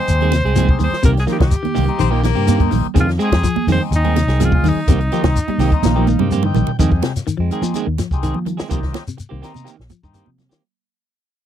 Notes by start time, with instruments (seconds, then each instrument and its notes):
Already playing: transistor combo organ G#3 C4 D#4 G4, alto saxophone C5
0.08 fingered electric bass D#2, muted clean electric guitar stroke, closed hi-hat, high conga, shekere
0.21 clean electric guitar D#3 G#3 C4 G#4, closed hi-hat, low conga
0.32 clean electric guitar C3, muted clean electric guitar stroke, snare, closed hi-hat, high conga, shekere
0.44 fingered electric bass C2, clean electric guitar G#3 C4 G#4, closed hi-hat, high conga
0.56 clean electric guitar D#3 F3 G#3 C4 G#4, closed hi-hat, high conga, shekere
0.69 transistor combo organ G#3 C4 D#4 G4, muted clean electric guitar stroke, kick
0.79 fingered electric bass D#2, clean electric guitar D#3, muted clean electric guitar stroke, open hi-hat, low conga, shekere
0.83 alto saxophone C5
0.92 muted fingered electric bass stroke, snare
1.03 fingered electric bass C2, clean electric guitar C3 D#3 A#3 C4 G4, alto saxophone A#4, kick, closed hi-hat, shekere
1.16 alto saxophone G#4, muted clean electric guitar stroke, snare, closed hi-hat
1.27 clean electric guitar D#3 F3 A#3, transistor combo organ A#3 C4 D#4 G4, muted clean electric guitar stroke, snare, closed hi-hat, shekere
1.32 alto saxophone G4
1.39 fingered electric bass C2, clean electric guitar D#3, alto saxophone G4, muted clean electric guitar stroke, kick, snare, high conga
1.51 kick, closed hi-hat, high conga, shekere
1.63 clean electric guitar D#3, muted clean electric guitar stroke, muted fingered electric bass stroke, closed hi-hat, high conga
1.75 fingered electric bass C2, clean electric guitar D#3 A#3 C4 G4, open hi-hat, low conga, shekere
1.86 transistor combo organ A#3 C4 D#4 G4, muted clean electric guitar stroke, closed hi-hat
1.98 fingered electric bass A#1, clean electric guitar D#3, baritone saxophone C4, muted clean electric guitar stroke, closed hi-hat, high conga, shekere
2.11 clean electric guitar D#3 F3 A#3 G4, baritone saxophone A#3, muted clean electric guitar stroke
2.24 clean electric guitar D#3, baritone saxophone A#3, muted clean electric guitar stroke, snare, closed hi-hat, high conga, shekere
2.35 fingered electric bass G2, clean electric guitar C3 A#3 C4 G4, closed hi-hat, high conga
2.47 clean electric guitar D#3 A#3 C4 G4, closed hi-hat, high conga, shekere
2.60 transistor combo organ A#3 C4 D#4 G4, muted clean electric guitar stroke, kick, closed hi-hat, high conga
2.71 fingered electric bass A#1, clean electric guitar D#3, muted clean electric guitar stroke, open hi-hat, low conga, shekere
2.84 closed hi-hat
2.94 fingered electric bass F2, clean electric guitar C3 D#3 G#3 C4 G#4, kick, closed hi-hat, shekere
3.00 alto saxophone F4
3.07 clean electric guitar D#3, muted clean electric guitar stroke, snare, closed hi-hat
3.18 clean electric guitar G#3 C4 G#4, transistor combo organ G#3 C4 D#4, muted clean electric guitar stroke, closed hi-hat, shekere
3.23 transistor combo organ G4, alto saxophone G#4
3.31 fingered electric bass F2, muted clean electric guitar stroke, kick, snare, closed hi-hat, high conga
3.44 clean electric guitar F3, kick, closed hi-hat, high conga, shekere
3.56 muted clean electric guitar stroke, muted fingered electric bass stroke, high conga
3.67 fingered electric bass F2, clean electric guitar D#3 G#3 C4 G#4, snare, open hi-hat, low conga, shekere
3.72 alto saxophone C5
3.80 transistor combo organ G#3 C4 D#4 G4, muted clean electric guitar stroke
3.91 fingered electric bass D#2, muted clean electric guitar stroke, closed hi-hat, high conga, shekere
3.96 alto saxophone D#4
4.04 clean electric guitar D#3 G#3 C4 G#4, closed hi-hat, low conga
4.16 clean electric guitar C3, muted clean electric guitar stroke, snare, closed hi-hat, high conga, shekere
4.27 fingered electric bass C2, clean electric guitar G#3 C4 G#4, snare, closed hi-hat, high conga
4.39 clean electric guitar D#3 F3 G#3 C4 G#4, closed hi-hat, high conga, shekere
4.44 alto saxophone F4
4.52 transistor combo organ G#3 C4 D#4 G#4, muted clean electric guitar stroke, kick, high conga
4.62 fingered electric bass D#2, clean electric guitar D#3, muted clean electric guitar stroke, open hi-hat, low conga, shekere
4.68 alto saxophone D#4
4.75 muted fingered electric bass stroke
4.88 fingered electric bass C2, clean electric guitar C3 D#3 A#3 C4 G4, kick, closed hi-hat, shekere
5.00 muted clean electric guitar stroke, closed hi-hat
5.12 clean electric guitar D#3 F3 A#3 G4, transistor combo organ A#3 C4 D#4 G4, closed hi-hat, shekere
5.23 fingered electric bass C2, clean electric guitar D#3, muted clean electric guitar stroke, kick, snare, high conga
5.35 kick, closed hi-hat, high conga, shekere
5.48 clean electric guitar G3, muted clean electric guitar stroke, muted fingered electric bass stroke, closed hi-hat, high conga
5.58 fingered electric bass C2, clean electric guitar D#3 A#3 C4 G4, transistor combo organ D#5, snare, open hi-hat, low conga, shekere
5.72 transistor combo organ A#3 C4 D#4 A#4, muted clean electric guitar stroke, kick, closed hi-hat
5.82 fingered electric bass A#1, clean electric guitar D#3, transistor combo organ F5, muted clean electric guitar stroke, snare, high conga, shekere
5.96 clean electric guitar D#3 F3 A#3 C4 G4
6.07 clean electric guitar D#3, muted clean electric guitar stroke, high tom, high conga, shekere
6.19 fingered electric bass G2, clean electric guitar C3 A#3 C4 G4, low conga
6.31 clean electric guitar A#3 C4 G4, transistor combo organ G5, muted clean electric guitar stroke, mid tom, shekere
6.43 clean electric guitar D#3, transistor combo organ A#3 C4 D#4 G4, mid tom, low conga
6.55 fingered electric bass A#1, clean electric guitar D#3, muted clean electric guitar stroke, floor tom, low conga, shekere
6.67 floor tom, low conga
6.79 fingered electric bass F2, clean electric guitar D#3 G#3 C4 G#4, transistor combo organ G#3 C4 D#4 G4, kick, closed hi-hat, low conga, shekere
6.92 muted clean electric guitar stroke, kick
7.02 clean electric guitar C3, muted clean electric guitar stroke, snare, closed hi-hat, high conga, shekere
7.16 snare, closed hi-hat, shekere
7.27 clean electric guitar D#3, muted clean electric guitar stroke, closed hi-hat, shekere
7.37 fingered electric bass F2, clean electric guitar F3 G#3 C4
7.51 clean electric guitar D#3 G#3 C4 G#4, transistor combo organ G#3 C4 D#4 G4, closed hi-hat, shekere
7.62 fingered electric bass F3, clean electric guitar F3, muted clean electric guitar stroke, high conga, shekere
7.74 clean electric guitar D#3 G#3 C4 G#4, closed hi-hat, high conga, shekere
7.86 fingered electric bass D#2, clean electric guitar D#3, muted clean electric guitar stroke
7.98 clean electric guitar F3, muted clean electric guitar stroke, snare, closed hi-hat, high conga, shekere
8.11 fingered electric bass C2, transistor combo organ G#3 C4 D#4 G4, kick, shekere
8.23 clean electric guitar D#3 G#3 C4 G#4, closed hi-hat, shekere
8.34 fingered electric bass F3, muted clean electric guitar stroke, high conga
8.46 clean electric guitar D#3, muted clean electric guitar stroke, closed hi-hat, low conga, shekere
8.57 clean electric guitar G#3 C4 G#4, muted fingered electric bass stroke, snare, shekere
8.69 fingered electric bass C2, clean electric guitar D#3 F3 A#3 C4 G4, transistor combo organ A#3 C4 D#4 G4, kick, closed hi-hat, low conga, shekere
8.81 clean electric guitar D#3, muted clean electric guitar stroke, kick, snare
8.93 muted clean electric guitar stroke, snare, closed hi-hat, high conga, shekere
9.07 clean electric guitar C3, shekere
9.17 muted clean electric guitar stroke, closed hi-hat, shekere
9.29 fingered electric bass C2, clean electric guitar D#3 A#3 C4 G4
9.41 clean electric guitar D#3 A#3 C4 G4, transistor combo organ A#3 C4 D#4 A#4, snare, closed hi-hat, shekere
9.54 fingered electric bass C3, muted clean electric guitar stroke, high conga, shekere
9.64 clean electric guitar D#3 A#3 C4 G4, muted clean electric guitar stroke, closed hi-hat, shekere
9.77 fingered electric bass A#1, muted clean electric guitar stroke, snare
9.90 clean electric guitar F3, muted clean electric guitar stroke, closed hi-hat, high conga, shekere
10.03 fingered electric bass G2, clean electric guitar D#3, transistor combo organ A#3 C4 D#4 G4, kick, shekere
10.13 clean electric guitar D#3 A#3 C4 G4, closed hi-hat, shekere
10.26 fingered electric bass C3, clean electric guitar F3, muted clean electric guitar stroke, high conga
10.38 muted clean electric guitar stroke, snare, closed hi-hat, low conga, shekere
10.49 clean electric guitar D#3 A#3 C4 G4, snare, closed hi-hat, shekere